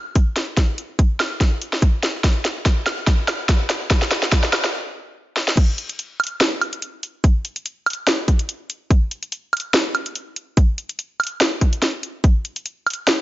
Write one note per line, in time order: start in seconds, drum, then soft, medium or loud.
0.15 kick loud
0.15 closed hi-hat medium
0.36 snare medium
0.36 closed hi-hat medium
0.57 kick medium
0.57 snare medium
0.57 closed hi-hat medium
0.78 closed hi-hat medium
0.99 kick medium
0.99 closed hi-hat medium
1.20 snare medium
1.20 closed hi-hat medium
1.20 high woodblock medium
1.41 kick loud
1.41 snare medium
1.41 closed hi-hat medium
1.62 closed hi-hat medium
1.73 snare medium
1.82 kick loud
1.82 closed hi-hat medium
2.03 snare medium
2.03 closed hi-hat medium
2.24 kick medium
2.24 snare medium
2.24 closed hi-hat medium
2.45 snare medium
2.45 closed hi-hat medium
2.66 kick loud
2.66 snare medium
2.66 closed hi-hat medium
2.86 snare medium
2.86 closed hi-hat medium
2.86 high woodblock medium
3.07 kick loud
3.07 snare medium
3.07 closed hi-hat medium
3.28 snare medium
3.28 closed hi-hat medium
3.28 high woodblock medium
3.49 kick loud
3.49 snare medium
3.49 closed hi-hat medium
3.70 snare medium
3.70 closed hi-hat medium
3.90 kick medium
3.90 snare medium
3.90 closed hi-hat medium
4.02 snare medium
4.11 snare medium
4.11 closed hi-hat medium
4.23 snare medium
4.32 kick loud
4.32 snare loud
4.32 closed hi-hat medium
4.43 snare medium
4.53 snare loud
4.53 closed hi-hat medium
4.53 high woodblock medium
4.64 snare medium
5.36 snare medium
5.48 snare medium
5.57 kick loud
5.57 closed hi-hat medium
5.57 crash loud
5.78 closed hi-hat medium
5.89 closed hi-hat medium
5.99 closed hi-hat medium
6.20 closed hi-hat medium
6.20 high woodblock medium
6.24 closed hi-hat medium
6.27 closed hi-hat medium
6.41 snare loud
6.41 closed hi-hat medium
6.62 closed hi-hat medium
6.62 high woodblock medium
6.73 closed hi-hat medium
6.82 closed hi-hat medium
7.03 closed hi-hat medium
7.24 kick loud
7.24 closed hi-hat medium
7.45 closed hi-hat medium
7.56 closed hi-hat medium
7.66 closed hi-hat medium
7.86 closed hi-hat medium
7.86 high woodblock medium
7.90 closed hi-hat medium
7.93 closed hi-hat medium
8.07 snare loud
8.07 closed hi-hat medium
8.28 kick medium
8.28 closed hi-hat medium
8.39 closed hi-hat medium
8.49 closed hi-hat medium
8.70 closed hi-hat medium
8.91 kick loud
8.91 closed hi-hat medium
9.11 closed hi-hat medium
9.23 closed hi-hat medium
9.32 closed hi-hat medium
9.53 closed hi-hat medium
9.53 high woodblock medium
9.57 closed hi-hat medium
9.60 closed hi-hat medium
9.74 snare loud
9.74 closed hi-hat medium
9.95 closed hi-hat medium
9.95 high woodblock medium
10.06 closed hi-hat medium
10.15 closed hi-hat medium
10.36 closed hi-hat medium
10.57 kick loud
10.57 closed hi-hat medium
10.78 closed hi-hat medium
10.89 closed hi-hat medium
10.99 closed hi-hat medium
11.20 closed hi-hat soft
11.20 high woodblock medium
11.24 closed hi-hat medium
11.27 closed hi-hat medium
11.41 snare loud
11.41 closed hi-hat medium
11.61 kick medium
11.61 closed hi-hat medium
11.73 closed hi-hat medium
11.82 snare medium
11.82 closed hi-hat medium
12.03 closed hi-hat medium
12.24 kick loud
12.24 closed hi-hat medium
12.45 closed hi-hat medium
12.56 closed hi-hat medium
12.66 closed hi-hat medium
12.87 closed hi-hat soft
12.87 high woodblock medium
12.90 closed hi-hat medium
12.94 closed hi-hat medium
13.07 snare loud
13.07 closed hi-hat medium